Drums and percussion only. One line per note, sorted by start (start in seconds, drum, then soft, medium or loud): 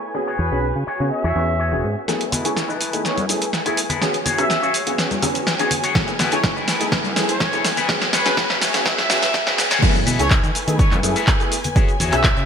2.08 snare soft
2.08 shaker soft
2.21 closed hi-hat medium
2.21 shaker soft
2.32 open hi-hat loud
2.32 low conga medium
2.32 shaker medium
2.45 closed hi-hat medium
2.45 shaker medium
2.45 shaker soft
2.56 snare soft
2.56 shaker medium
2.56 shaker soft
2.70 shaker soft
2.81 open hi-hat loud
2.81 shaker medium
2.93 closed hi-hat medium
2.93 shaker medium
2.93 shaker soft
3.04 snare soft
3.04 shaker medium
3.04 shaker soft
3.18 closed hi-hat soft
3.18 high conga medium
3.18 shaker soft
3.29 open hi-hat loud
3.29 shaker medium
3.42 closed hi-hat medium
3.42 shaker medium
3.42 shaker soft
3.53 snare medium
3.53 shaker soft
3.66 closed hi-hat medium
3.66 shaker soft
3.77 open hi-hat loud
3.77 shaker medium
3.90 closed hi-hat medium
3.90 low conga medium
3.90 shaker soft
3.90 shaker medium
4.02 snare medium
4.02 shaker soft
4.14 closed hi-hat medium
4.14 shaker soft
4.26 open hi-hat loud
4.26 low conga medium
4.26 shaker medium
4.38 cross-stick medium
4.38 closed hi-hat medium
4.38 shaker medium
4.38 shaker soft
4.50 snare medium
4.50 shaker soft
4.63 shaker soft
4.74 open hi-hat loud
4.74 shaker medium
4.87 closed hi-hat medium
4.87 shaker medium
4.87 shaker soft
4.98 snare medium
4.98 shaker soft
5.11 closed hi-hat soft
5.11 high conga loud
5.11 shaker soft
5.22 cross-stick medium
5.22 open hi-hat loud
5.22 low conga loud
5.22 shaker medium
5.35 closed hi-hat medium
5.35 shaker medium
5.35 shaker soft
5.47 snare medium
5.47 shaker medium
5.47 shaker soft
5.59 closed hi-hat medium
5.59 shaker soft
5.71 open hi-hat loud
5.71 low conga medium
5.71 shaker medium
5.83 closed hi-hat medium
5.83 shaker medium
5.83 shaker soft
5.95 kick loud
5.95 snare medium
5.95 shaker soft
6.08 closed hi-hat medium
6.08 shaker soft
6.19 snare medium
6.19 open hi-hat loud
6.19 low conga medium
6.19 shaker medium
6.32 closed hi-hat medium
6.32 shaker medium
6.32 shaker soft
6.43 kick loud
6.43 snare medium
6.43 shaker soft
6.56 shaker soft
6.68 snare medium
6.68 open hi-hat loud
6.68 shaker medium
6.79 closed hi-hat medium
6.79 shaker medium
6.81 shaker soft
6.92 kick loud
6.92 snare medium
6.92 shaker soft
7.04 closed hi-hat soft
7.04 high conga loud
7.04 shaker soft
7.16 snare medium
7.16 open hi-hat loud
7.16 shaker medium
7.29 closed hi-hat medium
7.29 shaker medium
7.29 shaker soft
7.40 kick loud
7.40 snare medium
7.40 shaker soft
7.53 closed hi-hat medium
7.53 shaker soft
7.65 snare medium
7.65 open hi-hat loud
7.65 shaker medium
7.77 closed hi-hat medium
7.77 low conga medium
7.77 shaker medium
7.77 shaker soft
7.89 kick loud
7.89 snare medium
7.89 shaker medium
7.89 shaker soft
8.02 snare medium
8.02 closed hi-hat medium
8.02 shaker soft
8.12 snare medium
8.12 open hi-hat loud
8.12 low conga medium
8.12 shaker medium
8.25 snare medium
8.25 closed hi-hat medium
8.25 shaker medium
8.25 shaker soft
8.37 kick loud
8.37 snare loud
8.37 shaker medium
8.37 shaker soft
8.50 snare medium
8.50 shaker soft
8.61 snare loud
8.61 open hi-hat loud
8.61 shaker medium
8.74 snare medium
8.74 closed hi-hat medium
8.74 shaker medium
8.74 shaker soft
8.85 kick loud
8.85 snare loud
8.85 shaker medium
8.85 shaker soft
8.98 snare medium
8.98 closed hi-hat soft
8.98 high conga loud
8.98 shaker soft
9.10 snare loud
9.10 open hi-hat loud
9.10 low conga loud
9.10 shaker medium
9.23 snare loud
9.23 closed hi-hat medium
9.23 shaker medium
9.23 shaker soft
9.34 kick loud
9.34 snare loud
9.34 shaker medium
9.34 shaker soft
9.47 snare loud
9.47 closed hi-hat medium
9.47 shaker soft
9.58 snare loud
9.58 open hi-hat loud
9.58 low conga medium
9.58 shaker medium
9.70 snare loud
9.70 closed hi-hat medium
9.70 shaker medium
9.70 shaker soft
9.82 kick loud
9.82 closed hi-hat medium
9.82 crash loud
9.82 shaker medium
9.82 shaker soft
9.94 closed hi-hat soft
9.94 shaker soft
9.96 shaker soft
10.06 open hi-hat loud
10.06 low conga medium
10.06 shaker medium
10.19 closed hi-hat medium
10.19 shaker medium
10.19 shaker soft
10.30 kick loud
10.30 clap loud
10.30 closed hi-hat medium
10.30 shaker medium
10.30 shaker soft
10.44 closed hi-hat soft
10.44 shaker soft
10.55 open hi-hat loud
10.55 shaker medium
10.68 closed hi-hat medium
10.68 shaker medium
10.68 shaker soft
10.79 kick loud
10.79 closed hi-hat medium
10.79 shaker medium
10.79 shaker soft
10.91 clap soft
10.91 closed hi-hat soft
10.91 high conga medium
10.91 shaker soft
11.03 open hi-hat loud
11.03 shaker medium
11.16 closed hi-hat medium
11.16 shaker soft
11.16 shaker medium
11.27 kick loud
11.27 clap loud
11.27 closed hi-hat medium
11.27 shaker medium
11.27 shaker soft
11.40 closed hi-hat soft
11.40 shaker soft
11.52 open hi-hat loud
11.52 shaker medium
11.64 closed hi-hat medium
11.64 low conga medium
11.64 shaker medium
11.64 shaker soft
11.76 kick loud
11.76 closed hi-hat medium
11.76 shaker medium
11.76 shaker soft
11.89 closed hi-hat soft
11.89 shaker soft
12.00 open hi-hat loud
12.00 low conga medium
12.00 shaker medium
12.12 cross-stick medium
12.12 clap soft
12.12 closed hi-hat medium
12.12 shaker medium
12.12 shaker soft
12.24 kick loud
12.24 clap loud
12.24 closed hi-hat medium
12.24 shaker medium
12.24 shaker soft
12.37 closed hi-hat soft
12.37 shaker soft